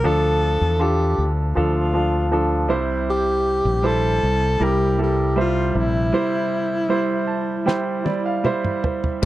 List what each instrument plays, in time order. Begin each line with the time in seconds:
0.04 fretless electric bass D2, grand piano D3 F3 D4 A4, alto saxophone A4
0.61 fretless electric bass E2
0.79 grand piano D4 F4 A4, alto saxophone G4
1.18 fretless electric bass D2
1.55 fretless electric bass D2, grand piano F3 D4 A4, alto saxophone F4
1.93 grand piano F3 D4 A4
2.31 grand piano F3 D4 A4
2.68 fretless electric bass C2, grand piano C3 G3 E4 C5
3.10 alto saxophone G4
3.65 fretless electric bass A#1
3.83 grand piano G3 E4 C5, alto saxophone A4
4.23 fretless electric bass C2
4.59 fretless electric bass C2, grand piano G3 E4 A#4
4.64 alto saxophone G4
4.98 grand piano G3 E4 A4
5.03 alto saxophone G4
5.36 grand piano G3 C5 E5
5.40 alto saxophone F4
5.75 fretless electric bass A#1, grand piano C3, alto saxophone E4
6.13 grand piano G3 E4 C5
6.89 grand piano G3 E4 C5
7.27 grand piano A5
7.66 grand piano G3 E4 C5 G5, snare
8.04 grand piano G3 E4 D5, high tom
8.26 grand piano F5
8.44 grand piano G3 E4 C5 E5, mid tom
8.65 mid tom
8.84 grand piano C5, floor tom
9.04 floor tom